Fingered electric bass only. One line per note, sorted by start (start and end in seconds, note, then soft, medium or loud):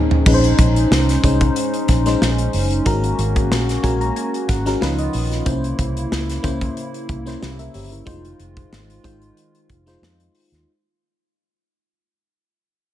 0.26 0.51 A#1 loud
0.59 0.84 A#1 loud
0.91 1.16 C2 loud
1.24 1.49 C2 medium
1.89 2.14 A#1 medium
2.21 2.47 A#1 medium
2.54 2.79 F#1 medium
2.86 3.11 G#1 loud
3.19 3.51 G#1 loud
3.51 3.76 A#1 loud
3.84 4.09 A#1 medium
4.49 4.74 G#1 loud
4.82 5.07 C#2 loud
5.14 5.39 A#1 medium
5.46 5.72 C2 loud
5.79 6.04 C2 medium
6.12 6.37 C#2 medium
6.44 6.69 C#2 medium
7.09 7.34 C2 medium
7.42 7.67 C2 medium
7.75 8.00 G1 medium
8.07 8.32 F1 loud
8.40 8.65 F1 medium
8.72 8.97 G#1 loud
9.04 9.30 G#1 medium
9.70 9.95 F1 loud
10.02 10.27 F2 loud
10.52 10.64 D#2 medium